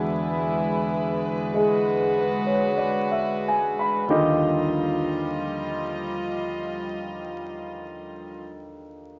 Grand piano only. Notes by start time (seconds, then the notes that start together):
Already playing: E2 E3 D4 F#4 G#4 B4 D5 G#5
1.54 G#3 E4 G#4
2.18 B4
2.47 C#5
2.77 D5
3.11 E5
3.48 G#5
3.79 B5
4.08 D#2 D3 D#3 F4 G4 D#5